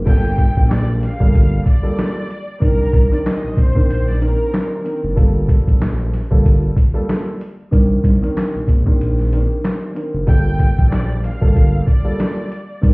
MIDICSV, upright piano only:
0, 0, Header, 1, 2, 480
1, 0, Start_track
1, 0, Key_signature, -2, "minor"
1, 0, Tempo, 638298
1, 49, Time_signature, 4, 2, 24, 8
1, 9730, End_track
2, 0, Start_track
2, 0, Title_t, "Upright piano"
2, 0, Program_c, 0, 0
2, 42, Note_on_c, 0, 55, 94
2, 44, Note_on_c, 0, 58, 83
2, 45, Note_on_c, 0, 65, 83
2, 47, Note_on_c, 0, 69, 101
2, 716, Note_off_c, 0, 55, 0
2, 717, Note_off_c, 0, 58, 0
2, 718, Note_off_c, 0, 65, 0
2, 719, Note_off_c, 0, 69, 0
2, 902, Note_on_c, 0, 55, 94
2, 904, Note_on_c, 0, 58, 87
2, 906, Note_on_c, 0, 65, 85
2, 908, Note_on_c, 0, 69, 101
2, 1222, Note_off_c, 0, 55, 0
2, 1223, Note_off_c, 0, 58, 0
2, 1224, Note_off_c, 0, 65, 0
2, 1225, Note_off_c, 0, 69, 0
2, 1377, Note_on_c, 0, 55, 97
2, 1379, Note_on_c, 0, 58, 79
2, 1380, Note_on_c, 0, 65, 78
2, 1383, Note_on_c, 0, 69, 108
2, 1699, Note_off_c, 0, 55, 0
2, 1700, Note_off_c, 0, 58, 0
2, 1701, Note_off_c, 0, 65, 0
2, 1702, Note_off_c, 0, 69, 0
2, 1955, Note_on_c, 0, 51, 93
2, 1957, Note_on_c, 0, 60, 84
2, 1959, Note_on_c, 0, 62, 88
2, 1961, Note_on_c, 0, 70, 99
2, 2307, Note_off_c, 0, 51, 0
2, 2308, Note_off_c, 0, 60, 0
2, 2309, Note_off_c, 0, 62, 0
2, 2310, Note_off_c, 0, 70, 0
2, 2341, Note_on_c, 0, 51, 100
2, 2344, Note_on_c, 0, 60, 91
2, 2345, Note_on_c, 0, 62, 87
2, 2347, Note_on_c, 0, 70, 99
2, 2662, Note_off_c, 0, 51, 0
2, 2663, Note_off_c, 0, 60, 0
2, 2663, Note_off_c, 0, 62, 0
2, 2665, Note_off_c, 0, 70, 0
2, 2820, Note_on_c, 0, 51, 96
2, 2821, Note_on_c, 0, 60, 94
2, 2823, Note_on_c, 0, 62, 88
2, 2825, Note_on_c, 0, 70, 108
2, 3141, Note_off_c, 0, 51, 0
2, 3142, Note_off_c, 0, 60, 0
2, 3142, Note_off_c, 0, 62, 0
2, 3144, Note_off_c, 0, 70, 0
2, 3172, Note_on_c, 0, 51, 86
2, 3174, Note_on_c, 0, 60, 83
2, 3176, Note_on_c, 0, 62, 85
2, 3177, Note_on_c, 0, 70, 97
2, 3618, Note_off_c, 0, 51, 0
2, 3619, Note_off_c, 0, 60, 0
2, 3620, Note_off_c, 0, 62, 0
2, 3620, Note_off_c, 0, 70, 0
2, 3639, Note_on_c, 0, 51, 81
2, 3642, Note_on_c, 0, 60, 73
2, 3643, Note_on_c, 0, 62, 71
2, 3644, Note_on_c, 0, 70, 92
2, 3868, Note_off_c, 0, 51, 0
2, 3869, Note_off_c, 0, 60, 0
2, 3870, Note_off_c, 0, 62, 0
2, 3870, Note_off_c, 0, 70, 0
2, 3879, Note_on_c, 0, 55, 92
2, 3881, Note_on_c, 0, 58, 84
2, 3882, Note_on_c, 0, 65, 85
2, 3883, Note_on_c, 0, 69, 102
2, 4555, Note_off_c, 0, 55, 0
2, 4556, Note_off_c, 0, 58, 0
2, 4556, Note_off_c, 0, 65, 0
2, 4557, Note_off_c, 0, 69, 0
2, 4742, Note_on_c, 0, 55, 95
2, 4745, Note_on_c, 0, 58, 89
2, 4746, Note_on_c, 0, 65, 89
2, 4747, Note_on_c, 0, 69, 104
2, 5062, Note_off_c, 0, 55, 0
2, 5063, Note_off_c, 0, 58, 0
2, 5064, Note_off_c, 0, 65, 0
2, 5065, Note_off_c, 0, 69, 0
2, 5219, Note_on_c, 0, 55, 100
2, 5221, Note_on_c, 0, 58, 81
2, 5223, Note_on_c, 0, 65, 78
2, 5224, Note_on_c, 0, 69, 112
2, 5540, Note_off_c, 0, 55, 0
2, 5542, Note_off_c, 0, 58, 0
2, 5542, Note_off_c, 0, 65, 0
2, 5543, Note_off_c, 0, 69, 0
2, 5799, Note_on_c, 0, 51, 91
2, 5800, Note_on_c, 0, 60, 81
2, 5802, Note_on_c, 0, 62, 91
2, 5804, Note_on_c, 0, 70, 105
2, 6149, Note_off_c, 0, 51, 0
2, 6149, Note_off_c, 0, 60, 0
2, 6150, Note_off_c, 0, 62, 0
2, 6151, Note_off_c, 0, 70, 0
2, 6184, Note_on_c, 0, 51, 101
2, 6186, Note_on_c, 0, 60, 88
2, 6188, Note_on_c, 0, 62, 85
2, 6190, Note_on_c, 0, 70, 98
2, 6503, Note_off_c, 0, 51, 0
2, 6504, Note_off_c, 0, 60, 0
2, 6505, Note_off_c, 0, 62, 0
2, 6506, Note_off_c, 0, 70, 0
2, 6662, Note_on_c, 0, 51, 95
2, 6663, Note_on_c, 0, 60, 91
2, 6665, Note_on_c, 0, 62, 89
2, 6667, Note_on_c, 0, 70, 104
2, 6982, Note_off_c, 0, 51, 0
2, 6982, Note_off_c, 0, 60, 0
2, 6984, Note_off_c, 0, 62, 0
2, 6985, Note_off_c, 0, 70, 0
2, 7014, Note_on_c, 0, 51, 87
2, 7015, Note_on_c, 0, 60, 87
2, 7017, Note_on_c, 0, 62, 85
2, 7019, Note_on_c, 0, 70, 97
2, 7459, Note_off_c, 0, 51, 0
2, 7459, Note_off_c, 0, 60, 0
2, 7460, Note_off_c, 0, 62, 0
2, 7461, Note_off_c, 0, 70, 0
2, 7481, Note_on_c, 0, 51, 78
2, 7482, Note_on_c, 0, 60, 70
2, 7484, Note_on_c, 0, 62, 68
2, 7485, Note_on_c, 0, 70, 89
2, 7709, Note_off_c, 0, 51, 0
2, 7709, Note_off_c, 0, 60, 0
2, 7710, Note_off_c, 0, 62, 0
2, 7711, Note_off_c, 0, 70, 0
2, 7722, Note_on_c, 0, 55, 94
2, 7723, Note_on_c, 0, 58, 83
2, 7724, Note_on_c, 0, 65, 82
2, 7726, Note_on_c, 0, 69, 104
2, 8396, Note_off_c, 0, 55, 0
2, 8397, Note_off_c, 0, 58, 0
2, 8398, Note_off_c, 0, 65, 0
2, 8398, Note_off_c, 0, 69, 0
2, 8582, Note_on_c, 0, 55, 96
2, 8584, Note_on_c, 0, 58, 89
2, 8585, Note_on_c, 0, 65, 87
2, 8587, Note_on_c, 0, 69, 109
2, 8902, Note_off_c, 0, 55, 0
2, 8903, Note_off_c, 0, 58, 0
2, 8904, Note_off_c, 0, 65, 0
2, 8904, Note_off_c, 0, 69, 0
2, 9058, Note_on_c, 0, 55, 99
2, 9059, Note_on_c, 0, 58, 80
2, 9061, Note_on_c, 0, 65, 79
2, 9062, Note_on_c, 0, 69, 105
2, 9380, Note_off_c, 0, 55, 0
2, 9380, Note_off_c, 0, 58, 0
2, 9382, Note_off_c, 0, 65, 0
2, 9382, Note_off_c, 0, 69, 0
2, 9635, Note_on_c, 0, 51, 91
2, 9638, Note_on_c, 0, 60, 82
2, 9639, Note_on_c, 0, 62, 89
2, 9641, Note_on_c, 0, 70, 100
2, 9730, Note_off_c, 0, 51, 0
2, 9730, Note_off_c, 0, 60, 0
2, 9730, Note_off_c, 0, 62, 0
2, 9730, Note_off_c, 0, 70, 0
2, 9730, End_track
0, 0, End_of_file